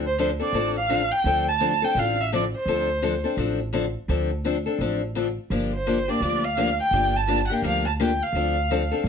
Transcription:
Already playing: D2
0.07 C5
0.18 D3 F3 C4 D4 A4 C5
0.39 C4 D4 A4 D5
0.52 A1 D3 F3 C4 D4 A4
0.77 F5
0.89 D3 F3 C4 D4 A4
1.12 G5
1.24 D2 D3 F3 C4 D4 A4
1.48 A5
1.60 D3 F3 C4 D4 A4
1.82 C4 D4 A4 G5
1.95 A1 D3 F3 C4 D4 A4
1.99 F5
2.21 E5
2.32 D3 F3 C4 D4 A4 D5
2.56 C5
2.65 D2 D3 F3 C4 D4 A4
3.02 D3 F3 C4 D4 A4
3.24 C4 D4 A4
3.37 A1 D3 F3 C4 D4 A4
3.73 D3 F3 C4 D4 A4
4.08 D2 D3 F3 C4 D4 A4
4.44 D3 F3 C4 D4 A4
4.66 C4 D4 A4
4.78 A1 D3 F3 C4 D4 A4
5.15 D3 F3 C4 D4 A4
5.50 G1 D3 F3 A#3 D4 G4
5.74 C5
5.87 D3 F3 A#3 D4 G4
6.08 A#3 D4 G4 D5
6.20 D2 D3 F3 A#3 D4 G4
6.44 F5
6.57 D3 F3 A#3 D4 G4
6.80 G5
6.91 G1 D3 F3 A#3 D4 G4
7.17 A5
7.27 D3 F3 A#3 D4 G4
7.47 D4 G4 F#5
7.51 A#3 G5
7.62 D2 D3 F3 A#3 D4 G4 F5
7.86 A5
8.00 D3 F3 A#3 D4 G4 G5
8.23 F5
8.32 D2 D3 F3 C4 D4 A4
8.71 D3 F3 C4 D4 A4
8.91 C4 D4 A4
9.03 A1

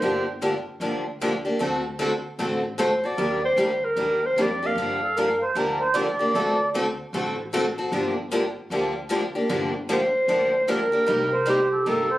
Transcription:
Already playing: C5
0.02 G1 D3 F3 A#3 D4 G4
0.42 D3 F3 A#3 D4 G4
0.80 D2 D3 F3 A#3 D4 G4
1.22 D3 F3 A#3 D4 G4
1.45 A#3 D4 G4
1.59 D2 D3 A3 C4 F#4 A4
1.99 D3 A3 C4 F#4 A4
2.39 A1 D3 A3 C4 F#4 A4
2.78 D3 A3 C4 F#4 A4 C5
3.04 C4 F#4 A4 D5
3.18 D#2 D#3 G3 A#3 D4 G4
3.45 C5
3.56 D2 D#3 G3 A#3 D4 G4
3.85 A#4
3.96 D#2 D#3 G3 A#3 D4 G4
4.26 C5
4.36 F2 D#3 G3 A#3 D4 G4
4.42 D5
4.63 A#3 D4 G4 F5
4.75 G2 D3 F3 A#3 D4 G4
5.02 A4
5.16 D3 F3 A#3 D4 G4 A#4
5.42 C5
5.55 D2 D3 F3 A#3 D4 G4 A#4
5.80 C5
5.94 D3 F3 A#3 D4 G4 D5
6.19 A#3 D4 G4
6.34 D2 D3 A3 C4 F#4 A4
6.75 D3 A3 C4 F#4 A4
7.13 A1 D3 A3 C4 F#4 A4
7.53 D3 A3 C4 F#4 A4
7.78 C4 F#4 A4
7.92 G1 D3 F3 A#3 D4 G4
8.31 D3 F3 A#3 D4 G4
8.70 D2 D3 F3 A#3 D4 G4
9.09 D3 F3 A#3 D4 G4
9.35 A#3 D4 G4
9.49 G1 D3 F3 A#3 D4 G4
9.89 D3 F3 A#3 D4 G4
9.93 C5
10.28 D2 D3 F3 A#3 D4 G4
10.68 D3 F3 A#3 D4 G4 A#4
10.92 A#3 D4 G4
11.06 C2 C3 G3 A#3 D#4 G4
11.32 C5
11.46 C3 G3 A#3 D#4 G4
11.71 A4
11.86 G1 C3 G3 A#3 D#4 G4 A4 A#4
12.10 C5

